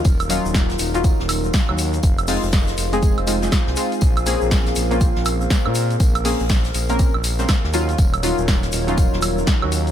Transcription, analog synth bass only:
X:1
M:4/4
L:1/16
Q:"Swing 16ths" 1/4=121
K:Bbm
V:1 name="Analog synth bass" clef=bass
E,,,3 E,,,3 E,,,3 E,,,3 z E,,3 | F,,,3 F,,,3 F,,,3 F,,,3 z C,, z2 | B,,,3 B,,,3 B,,,3 B,,,3 z B,,3 | B,,,3 B,,,3 B,,,3 B,,,3 z E,,3 |
E,,,3 E,,,3 E,,,3 E,,,3 z E,,3 |]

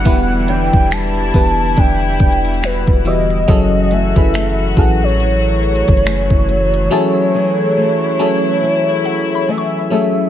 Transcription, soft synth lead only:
X:1
M:4/4
L:1/16
Q:"Swing 16ths" 1/4=70
K:F#dor
V:1 name="Soft synth lead"
f2 =g2 a4 g4 B2 d2- | d2 e4 f c8- c- | c12 e4 |]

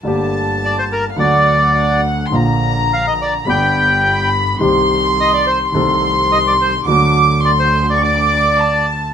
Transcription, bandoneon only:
X:1
M:4/4
L:1/16
Q:1/4=105
K:Gm
V:1 name="Bandoneon"
z4 d c B2 d6 z2 | z4 f e d2 g6 z2 | z4 e d c2 z4 e d c2 | z4 d c2 d d6 z2 |]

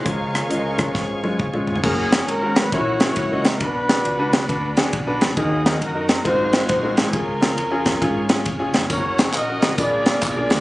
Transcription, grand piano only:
X:1
M:4/4
L:1/16
Q:"Swing" 1/4=136
K:F#
V:1 name="Grand piano"
[G,CEc]3 z [G,CEd] z [G,CEc]3 z [G,CEc]2 z [G,CEc]2 z | [CFA] z [CFc]2 z [CFA]2 z [A,C=EFc] z [A,CEFG]2 z [A,CEFd]2 z | [=DFB] z [DF=d]2 z [DFB]2 z [DFB] z [DFG]2 z [DFB]2 z | [DFA] z [DFA]2 z [DFA]2 z [G,^B,EFA] z [G,B,EF^B]2 z [G,B,EFA]2 z |
[CEG] z [CEG]2 z [CEG]2 z [CEG] z [CEG]2 z [CEG]2 z | [CFA] z [CFG]2 z [CFA]2 z [A,=DEGB] z [A,DEGA]2 z [A,DEG=d]2 z |]
V:2 name="Grand piano" clef=bass
C,6 z8 z2 | z8 A,,6 z2 | B,,6 z8 z2 | D,6 z2 G,,6 z2 |
C,6 z8 z2 | z8 A,,6 z2 |]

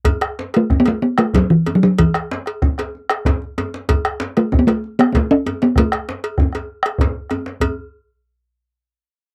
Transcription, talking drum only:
X:1
M:12/8
L:1/16
Q:3/8=128
K:A
V:1 name="Talking drum"
z6 A,3 B, A,2 B,2 A,2 F,2 E,3 F, F,2 | E,4- E,/2 z16 z3 z/2 | z6 A,3 B, A,4 B,3/2 B,/2 A,2 C4 B,2 | A,16- A,4 z4 |
z24 |]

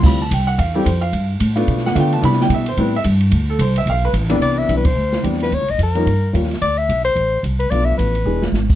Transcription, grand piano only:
X:1
M:4/4
L:1/8
Q:"Swing" 1/4=219
K:C
V:1 name="Grand piano"
b a g ^f =f A c f- | f z4 ^f g a | b g e c B e z2 | z A c e f B z2 |
z8 | z8 | z8 | z8 |]
V:2 name="Grand piano"
[G,CEF] z4 [G,CEG] z2 | z3 [A,B,DF]3 [A,B,DF]2 | [G,B,DE]3 z [G,B,CE] z3 | z6 z [C,,E,G,B,D]- |
[C,,E,G,B,D]2 [E,G,B,CD] z3 [E,G,B,CD]2 | z3 [F,G,_B,_D_E] z2 [F,G,B,DF] z | z8 | [F,A,B,DF]3 z [E,^G,B,D^G] z3 |]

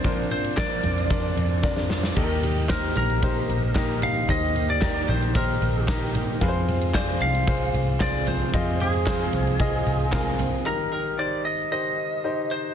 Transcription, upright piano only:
X:1
M:4/4
L:1/8
Q:1/4=113
K:Eb
V:1 name="Upright piano"
[DBc]2 [DBd]2 [DBd]2 [DBd]2 | [EG=AB]2 [EGc]2 [EGc]2 [EGB]2 | [EGc]2 [EGB]2 [EGc]2 [EGB]2 | [FA_c=c]2 [FAd]2 [FAc]2 [FAc]2 |
[FAe]2 [FAc]2 [FAe]2 [FAB]2 | [EGB] [EGB] [EGc]2 [EGc]2 [EGc]2 |]
V:2 name="Upright piano" clef=bass
B,,3 z4 z | E,3 z4 z | E,3 z4 z | z8 |
z8 | E,3 z4 z |]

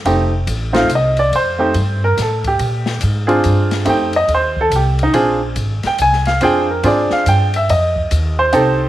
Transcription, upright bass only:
X:1
M:3/4
L:1/8
Q:"Swing" 1/4=142
K:Bb
V:1 name="Upright bass" clef=bass
F,,,2 A,,,2 C,,2 | F,,2 G,,2 A,,2 | B,,2 _A,,2 G,,2 | F,,2 E,,2 C,,2 |
B,,,2 _A,,, z C,,2 | F,,2 _A,, z G,,2 | F,,2 E,,2 C,,2 |]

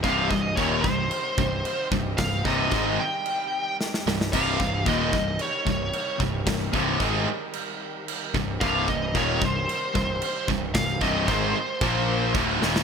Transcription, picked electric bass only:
X:1
M:4/4
L:1/8
Q:1/4=112
K:Cm
V:1 name="Picked electric bass" clef=bass
C,,, C,,, E,,, C,,, z C,,, z C,,, | C,,, C,,, A,,, z4 C,,, | C,,, C,,, E,,, C,,, z C,,, z C,,, | C,,, C,,, A,,, z4 C,,, |
C,,, C,,, E,,, C,,, z C,,, z C,,, | C,,, C,,, A,,, z B,,,2 D,,, E,,, |]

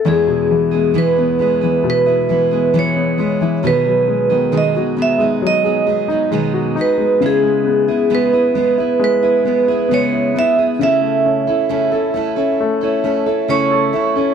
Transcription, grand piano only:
X:1
M:4/4
L:1/16
Q:1/4=67
K:E
V:1 name="Grand piano"
E,, B,, E, G, E, B, G, E, B,, E E, G, E, B, G, E, | B,, F, G, D, G, F B, G, F, G G, D G, F D G, | C, G, B, E B, E B, E G, E B, E B, E B, E | C, A, C E C A E C A, c C E C A E C |]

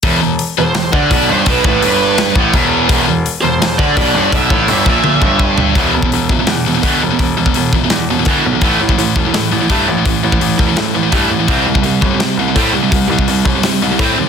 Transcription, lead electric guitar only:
X:1
M:4/4
L:1/8
Q:1/4=168
K:Em
V:1 name="Lead electric guitar"
z3 c2 d2 c | B B4 z3 | z3 c2 d2 d | e6 z2 |
z8 | z8 | z8 | z8 |
z8 | z8 |]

